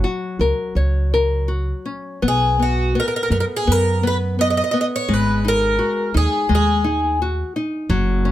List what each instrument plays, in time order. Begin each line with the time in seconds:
Already playing: nylon-string guitar F#3
0.04 nylon-string guitar F#4
0.39 upright bass C#2, nylon-string guitar A#4
0.75 upright bass C#2, nylon-string guitar C#5
1.14 nylon-string guitar A#4
1.48 nylon-string guitar F#4
1.86 nylon-string guitar C#4
2.22 upright bass B1, nylon-string guitar B3
2.28 twelve-string acoustic guitar G#4
2.59 nylon-string guitar B3, twelve-string acoustic guitar F#4
2.95 nylon-string guitar B3
3.00 twelve-string acoustic guitar A#4
3.08 twelve-string acoustic guitar A#4
3.16 twelve-string acoustic guitar A#4
3.23 twelve-string acoustic guitar A#4
3.30 upright bass F#2, nylon-string guitar B3, twelve-string acoustic guitar A#4
3.40 twelve-string acoustic guitar A#4
3.56 twelve-string acoustic guitar G#4
3.67 upright bass F#2, nylon-string guitar B3
3.72 twelve-string acoustic guitar A#4
4.03 nylon-string guitar B3, twelve-string acoustic guitar B4
4.39 nylon-string guitar B3, twelve-string acoustic guitar D#5
4.50 twelve-string acoustic guitar D#5
4.57 twelve-string acoustic guitar D#5
4.64 twelve-string acoustic guitar D#5
4.71 nylon-string guitar B3, twelve-string acoustic guitar D#5
4.81 twelve-string acoustic guitar D#5
4.96 twelve-string acoustic guitar C#5
5.08 upright bass G#1, nylon-string guitar G#3
5.14 twelve-string acoustic guitar B4
5.45 nylon-string guitar D#4, twelve-string acoustic guitar A#4
5.79 nylon-string guitar F#4
6.14 upright bass D#2, nylon-string guitar D#4, twelve-string acoustic guitar G#4
6.49 upright bass D#2, nylon-string guitar G#3
6.55 twelve-string acoustic guitar G#4
6.84 nylon-string guitar D#4
7.22 nylon-string guitar F#4
7.56 nylon-string guitar D#4
7.90 upright bass F#1, nylon-string guitar F#3
8.25 nylon-string guitar C#4